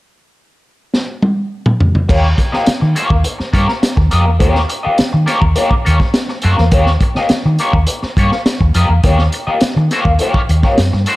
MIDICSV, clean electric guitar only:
0, 0, Header, 1, 3, 480
1, 0, Start_track
1, 0, Tempo, 579151
1, 1732, Time_signature, 4, 2, 24, 8
1, 9249, End_track
2, 0, Start_track
2, 0, Title_t, "Clean electric guitar"
2, 0, Program_c, 0, 27
2, 1730, Note_on_c, 0, 58, 69
2, 1735, Note_on_c, 0, 65, 75
2, 1740, Note_on_c, 0, 67, 73
2, 1744, Note_on_c, 0, 73, 79
2, 1874, Note_off_c, 0, 58, 0
2, 1877, Note_off_c, 0, 65, 0
2, 1879, Note_off_c, 0, 67, 0
2, 1881, Note_off_c, 0, 73, 0
2, 2090, Note_on_c, 0, 75, 53
2, 2092, Note_on_c, 0, 67, 54
2, 2098, Note_on_c, 0, 65, 52
2, 2102, Note_on_c, 0, 58, 48
2, 2203, Note_off_c, 0, 75, 0
2, 2204, Note_off_c, 0, 67, 0
2, 2206, Note_off_c, 0, 65, 0
2, 2209, Note_off_c, 0, 58, 0
2, 2449, Note_on_c, 0, 58, 70
2, 2453, Note_on_c, 0, 65, 85
2, 2455, Note_on_c, 0, 67, 71
2, 2462, Note_on_c, 0, 73, 86
2, 2565, Note_off_c, 0, 73, 0
2, 2568, Note_off_c, 0, 67, 0
2, 2574, Note_off_c, 0, 65, 0
2, 2616, Note_off_c, 0, 58, 0
2, 2925, Note_on_c, 0, 58, 84
2, 2931, Note_on_c, 0, 65, 82
2, 2936, Note_on_c, 0, 67, 84
2, 2939, Note_on_c, 0, 73, 86
2, 3042, Note_off_c, 0, 73, 0
2, 3048, Note_off_c, 0, 67, 0
2, 3050, Note_off_c, 0, 65, 0
2, 3071, Note_off_c, 0, 58, 0
2, 3407, Note_on_c, 0, 58, 80
2, 3411, Note_on_c, 0, 65, 81
2, 3418, Note_on_c, 0, 67, 82
2, 3421, Note_on_c, 0, 75, 85
2, 3523, Note_off_c, 0, 75, 0
2, 3525, Note_off_c, 0, 67, 0
2, 3526, Note_off_c, 0, 65, 0
2, 3551, Note_off_c, 0, 58, 0
2, 3642, Note_on_c, 0, 58, 79
2, 3649, Note_on_c, 0, 65, 81
2, 3650, Note_on_c, 0, 67, 94
2, 3654, Note_on_c, 0, 73, 88
2, 3813, Note_off_c, 0, 58, 0
2, 3816, Note_off_c, 0, 65, 0
2, 3816, Note_off_c, 0, 67, 0
2, 3818, Note_off_c, 0, 73, 0
2, 4005, Note_on_c, 0, 75, 55
2, 4012, Note_on_c, 0, 67, 63
2, 4016, Note_on_c, 0, 65, 53
2, 4018, Note_on_c, 0, 58, 46
2, 4119, Note_off_c, 0, 75, 0
2, 4122, Note_off_c, 0, 58, 0
2, 4123, Note_off_c, 0, 67, 0
2, 4125, Note_off_c, 0, 65, 0
2, 4361, Note_on_c, 0, 58, 82
2, 4368, Note_on_c, 0, 65, 82
2, 4374, Note_on_c, 0, 67, 85
2, 4376, Note_on_c, 0, 73, 83
2, 4476, Note_off_c, 0, 73, 0
2, 4481, Note_off_c, 0, 67, 0
2, 4484, Note_off_c, 0, 65, 0
2, 4508, Note_off_c, 0, 58, 0
2, 4605, Note_on_c, 0, 58, 82
2, 4612, Note_on_c, 0, 65, 85
2, 4616, Note_on_c, 0, 67, 91
2, 4620, Note_on_c, 0, 73, 88
2, 4723, Note_off_c, 0, 73, 0
2, 4726, Note_off_c, 0, 67, 0
2, 4730, Note_off_c, 0, 65, 0
2, 4750, Note_off_c, 0, 58, 0
2, 4847, Note_on_c, 0, 58, 56
2, 4854, Note_on_c, 0, 65, 61
2, 4858, Note_on_c, 0, 67, 65
2, 4861, Note_on_c, 0, 73, 74
2, 4960, Note_off_c, 0, 58, 0
2, 4963, Note_off_c, 0, 65, 0
2, 4965, Note_off_c, 0, 67, 0
2, 4967, Note_off_c, 0, 73, 0
2, 5333, Note_on_c, 0, 58, 90
2, 5333, Note_on_c, 0, 65, 80
2, 5341, Note_on_c, 0, 67, 82
2, 5346, Note_on_c, 0, 73, 86
2, 5440, Note_off_c, 0, 73, 0
2, 5447, Note_off_c, 0, 67, 0
2, 5450, Note_off_c, 0, 65, 0
2, 5497, Note_off_c, 0, 58, 0
2, 5571, Note_on_c, 0, 58, 75
2, 5575, Note_on_c, 0, 65, 85
2, 5582, Note_on_c, 0, 67, 83
2, 5585, Note_on_c, 0, 73, 99
2, 5713, Note_off_c, 0, 58, 0
2, 5715, Note_off_c, 0, 65, 0
2, 5718, Note_off_c, 0, 67, 0
2, 5720, Note_off_c, 0, 73, 0
2, 5939, Note_on_c, 0, 75, 62
2, 5944, Note_on_c, 0, 67, 57
2, 5950, Note_on_c, 0, 65, 53
2, 5951, Note_on_c, 0, 58, 48
2, 6046, Note_off_c, 0, 75, 0
2, 6048, Note_off_c, 0, 67, 0
2, 6052, Note_off_c, 0, 58, 0
2, 6052, Note_off_c, 0, 65, 0
2, 6296, Note_on_c, 0, 58, 74
2, 6300, Note_on_c, 0, 65, 81
2, 6307, Note_on_c, 0, 67, 82
2, 6312, Note_on_c, 0, 73, 83
2, 6411, Note_off_c, 0, 73, 0
2, 6412, Note_off_c, 0, 67, 0
2, 6416, Note_off_c, 0, 65, 0
2, 6436, Note_off_c, 0, 58, 0
2, 6776, Note_on_c, 0, 58, 74
2, 6781, Note_on_c, 0, 65, 68
2, 6786, Note_on_c, 0, 67, 80
2, 6789, Note_on_c, 0, 73, 88
2, 6887, Note_off_c, 0, 73, 0
2, 6889, Note_off_c, 0, 67, 0
2, 6893, Note_off_c, 0, 65, 0
2, 6916, Note_off_c, 0, 58, 0
2, 7250, Note_on_c, 0, 58, 83
2, 7252, Note_on_c, 0, 65, 89
2, 7257, Note_on_c, 0, 67, 90
2, 7261, Note_on_c, 0, 75, 79
2, 7369, Note_off_c, 0, 67, 0
2, 7370, Note_off_c, 0, 65, 0
2, 7373, Note_off_c, 0, 75, 0
2, 7393, Note_off_c, 0, 58, 0
2, 7495, Note_on_c, 0, 58, 89
2, 7501, Note_on_c, 0, 65, 84
2, 7502, Note_on_c, 0, 67, 81
2, 7509, Note_on_c, 0, 73, 100
2, 7635, Note_off_c, 0, 58, 0
2, 7639, Note_off_c, 0, 65, 0
2, 7639, Note_off_c, 0, 67, 0
2, 7643, Note_off_c, 0, 73, 0
2, 7848, Note_on_c, 0, 75, 62
2, 7851, Note_on_c, 0, 67, 60
2, 7859, Note_on_c, 0, 65, 56
2, 7861, Note_on_c, 0, 58, 45
2, 7961, Note_off_c, 0, 75, 0
2, 7963, Note_off_c, 0, 67, 0
2, 7966, Note_off_c, 0, 65, 0
2, 7967, Note_off_c, 0, 58, 0
2, 8219, Note_on_c, 0, 58, 82
2, 8223, Note_on_c, 0, 65, 78
2, 8229, Note_on_c, 0, 67, 88
2, 8231, Note_on_c, 0, 73, 74
2, 8329, Note_off_c, 0, 73, 0
2, 8333, Note_off_c, 0, 67, 0
2, 8335, Note_off_c, 0, 65, 0
2, 8381, Note_off_c, 0, 58, 0
2, 8455, Note_on_c, 0, 58, 76
2, 8462, Note_on_c, 0, 65, 83
2, 8463, Note_on_c, 0, 67, 75
2, 8471, Note_on_c, 0, 73, 90
2, 8620, Note_off_c, 0, 58, 0
2, 8623, Note_off_c, 0, 65, 0
2, 8623, Note_off_c, 0, 67, 0
2, 8627, Note_off_c, 0, 73, 0
2, 8819, Note_on_c, 0, 73, 56
2, 8823, Note_on_c, 0, 67, 48
2, 8826, Note_on_c, 0, 65, 48
2, 8833, Note_on_c, 0, 58, 50
2, 8927, Note_off_c, 0, 73, 0
2, 8929, Note_off_c, 0, 67, 0
2, 8930, Note_off_c, 0, 65, 0
2, 8934, Note_off_c, 0, 58, 0
2, 9175, Note_on_c, 0, 58, 86
2, 9182, Note_on_c, 0, 65, 78
2, 9184, Note_on_c, 0, 67, 84
2, 9189, Note_on_c, 0, 73, 96
2, 9249, Note_off_c, 0, 58, 0
2, 9249, Note_off_c, 0, 65, 0
2, 9249, Note_off_c, 0, 67, 0
2, 9249, Note_off_c, 0, 73, 0
2, 9249, End_track
3, 0, Start_track
3, 0, Title_t, "Muted clean electric guitar strokes"
3, 1972, Note_on_c, 9, 29, 38
3, 2055, Note_off_c, 9, 29, 0
3, 2332, Note_on_c, 9, 29, 41
3, 2415, Note_off_c, 9, 29, 0
3, 2575, Note_on_c, 9, 29, 39
3, 2658, Note_off_c, 9, 29, 0
3, 2806, Note_on_c, 9, 29, 38
3, 2889, Note_off_c, 9, 29, 0
3, 3051, Note_on_c, 9, 29, 40
3, 3134, Note_off_c, 9, 29, 0
3, 3168, Note_on_c, 9, 29, 30
3, 3251, Note_off_c, 9, 29, 0
3, 3288, Note_on_c, 9, 29, 39
3, 3371, Note_off_c, 9, 29, 0
3, 3527, Note_on_c, 9, 29, 39
3, 3609, Note_off_c, 9, 29, 0
3, 3885, Note_on_c, 9, 29, 40
3, 3968, Note_off_c, 9, 29, 0
3, 4132, Note_on_c, 9, 29, 37
3, 4215, Note_off_c, 9, 29, 0
3, 4250, Note_on_c, 9, 29, 45
3, 4333, Note_off_c, 9, 29, 0
3, 4486, Note_on_c, 9, 29, 49
3, 4568, Note_off_c, 9, 29, 0
3, 4733, Note_on_c, 9, 29, 38
3, 4816, Note_off_c, 9, 29, 0
3, 4976, Note_on_c, 9, 29, 48
3, 5058, Note_off_c, 9, 29, 0
3, 5216, Note_on_c, 9, 29, 49
3, 5299, Note_off_c, 9, 29, 0
3, 5450, Note_on_c, 9, 29, 50
3, 5533, Note_off_c, 9, 29, 0
3, 5820, Note_on_c, 9, 29, 41
3, 5902, Note_off_c, 9, 29, 0
3, 6182, Note_on_c, 9, 29, 41
3, 6265, Note_off_c, 9, 29, 0
3, 6421, Note_on_c, 9, 29, 41
3, 6504, Note_off_c, 9, 29, 0
3, 6654, Note_on_c, 9, 29, 39
3, 6737, Note_off_c, 9, 29, 0
3, 6897, Note_on_c, 9, 29, 39
3, 6980, Note_off_c, 9, 29, 0
3, 7007, Note_on_c, 9, 29, 35
3, 7090, Note_off_c, 9, 29, 0
3, 7135, Note_on_c, 9, 29, 46
3, 7218, Note_off_c, 9, 29, 0
3, 7376, Note_on_c, 9, 29, 41
3, 7459, Note_off_c, 9, 29, 0
3, 7736, Note_on_c, 9, 29, 40
3, 7819, Note_off_c, 9, 29, 0
3, 7981, Note_on_c, 9, 29, 44
3, 8063, Note_off_c, 9, 29, 0
3, 8100, Note_on_c, 9, 29, 38
3, 8183, Note_off_c, 9, 29, 0
3, 8339, Note_on_c, 9, 29, 47
3, 8421, Note_off_c, 9, 29, 0
3, 8701, Note_on_c, 9, 29, 38
3, 8784, Note_off_c, 9, 29, 0
3, 9061, Note_on_c, 9, 29, 45
3, 9144, Note_off_c, 9, 29, 0
3, 9249, End_track
0, 0, End_of_file